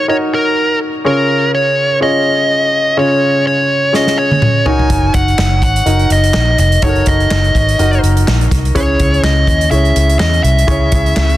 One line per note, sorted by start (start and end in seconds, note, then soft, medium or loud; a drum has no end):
0.00 0.08 D#4 medium
0.00 0.09 F#4 medium
0.00 0.08 A#4 medium
0.00 1.05 C#5 medium
0.00 0.08 D#5 medium
0.08 0.90 D#4 medium
0.08 0.91 F#4 medium
0.08 0.90 A#4 soft
0.08 0.16 C#5 medium
0.08 0.90 D#5 medium
0.34 0.78 A#4 medium
1.04 1.73 C#3 medium
1.04 1.87 C#4 medium
1.04 1.87 F4 medium
1.04 1.87 G#4 medium
1.04 1.50 A#4 medium
1.04 1.87 C#5 medium
1.55 1.98 C#5 medium
2.01 2.83 C#4 medium
2.01 2.83 F4 soft
2.01 2.83 G#4 soft
2.01 2.83 C#5 medium
2.01 2.98 D#5 medium
2.97 3.65 C#3 medium
2.97 3.79 C#4 medium
2.97 3.79 F4 medium
2.97 3.79 G#4 medium
2.97 3.79 C#5 medium
2.97 3.46 C#5 medium
3.47 3.95 C#5 medium
3.93 4.65 C#4 medium
3.93 4.65 F4 soft
3.93 4.65 G#4 soft
3.93 4.64 C#5 medium
3.93 4.18 D#5 medium
3.93 snare soft
4.07 snare soft
4.18 4.68 C#5 medium
4.31 high tom medium
4.42 mid tom medium
4.66 5.48 D#4 medium
4.66 5.48 F#4 medium
4.66 5.48 A#4 medium
4.66 5.48 C#5 medium
4.66 5.11 G#5 medium
4.66 floor tom medium
4.79 floor tom medium
4.90 5.10 F#1 medium
4.90 kick medium
4.90 closed hi-hat medium
5.14 5.34 F#1 medium
5.14 5.62 F#5 medium
5.14 kick medium
5.14 closed hi-hat medium
5.28 closed hi-hat soft
5.38 5.62 F#1 medium
5.38 snare medium
5.38 clap medium
5.62 5.82 G#1 medium
5.62 6.08 F#5 medium
5.62 kick medium
5.62 closed hi-hat medium
5.76 closed hi-hat medium
5.86 6.06 F#1 medium
5.86 6.68 D#4 soft
5.86 6.68 F#4 soft
5.86 6.68 A#4 soft
5.86 6.68 D#5 medium
5.86 closed hi-hat medium
5.99 closed hi-hat soft
6.10 6.30 F#1 medium
6.10 6.58 D#5 medium
6.10 closed hi-hat medium
6.24 closed hi-hat medium
6.34 6.54 A#1 medium
6.34 snare medium
6.34 clap medium
6.58 6.78 F1 medium
6.58 6.83 D#5 medium
6.58 closed hi-hat medium
6.72 closed hi-hat soft
6.82 7.65 D#4 medium
6.82 7.65 F#4 medium
6.82 6.89 A4 soft
6.82 7.65 C#5 medium
6.82 7.05 C#5 medium
6.82 kick medium
6.82 closed hi-hat medium
6.89 7.68 A#4 medium
6.96 closed hi-hat soft
7.06 7.26 F#1 medium
7.06 8.00 D#5 medium
7.06 kick medium
7.06 closed hi-hat medium
7.20 closed hi-hat soft
7.31 7.51 F#1 medium
7.31 snare medium
7.31 clap medium
7.44 closed hi-hat soft
7.55 7.75 G#1 medium
7.55 kick medium
7.55 closed hi-hat medium
7.69 closed hi-hat medium
7.79 7.99 F#1 medium
7.79 8.61 D#4 medium
7.79 8.61 F#4 medium
7.79 8.61 A#4 medium
7.79 8.61 D#5 medium
7.79 closed hi-hat medium
7.93 closed hi-hat soft
8.03 8.23 F#1 medium
8.03 closed hi-hat medium
8.17 closed hi-hat medium
8.27 8.47 A#1 medium
8.27 snare loud
8.27 clap medium
8.41 closed hi-hat soft
8.51 8.71 C2 medium
8.51 kick medium
8.51 snare soft
8.51 closed hi-hat medium
8.65 closed hi-hat soft
8.75 9.43 C#3 medium
8.75 9.57 C#4 medium
8.75 9.57 E4 medium
8.75 9.57 G#4 medium
8.75 9.58 C#5 medium
8.75 9.21 C#5 medium
8.75 kick medium
8.75 closed hi-hat medium
9.00 9.19 C#2 medium
9.00 kick medium
9.00 closed hi-hat medium
9.14 closed hi-hat soft
9.23 9.43 C#2 loud
9.23 9.69 D#5 medium
9.23 snare medium
9.23 clap medium
9.47 9.67 D#2 medium
9.47 kick medium
9.47 closed hi-hat medium
9.61 closed hi-hat medium
9.71 9.91 C#2 medium
9.71 10.54 C#4 medium
9.71 10.54 E4 soft
9.71 10.54 G#4 medium
9.71 10.54 C#5 medium
9.71 10.19 E5 medium
9.71 closed hi-hat medium
9.85 closed hi-hat soft
9.96 10.16 C#2 medium
9.96 closed hi-hat medium
10.09 closed hi-hat medium
10.19 10.39 E2 medium
10.19 10.43 D#5 medium
10.19 snare loud
10.19 clap medium
10.33 closed hi-hat soft
10.43 10.64 C2 medium
10.43 11.37 E5 medium
10.43 closed hi-hat medium
10.58 closed hi-hat soft
10.67 11.36 C#3 medium
10.67 11.37 C#4 medium
10.67 11.37 E4 medium
10.67 11.37 G#4 medium
10.67 11.37 C#5 medium
10.67 kick loud
10.67 closed hi-hat medium
10.92 11.12 C#2 medium
10.92 kick medium
10.92 closed hi-hat medium
11.06 closed hi-hat soft
11.16 11.36 C#2 medium
11.16 snare medium
11.16 clap medium
11.30 closed hi-hat soft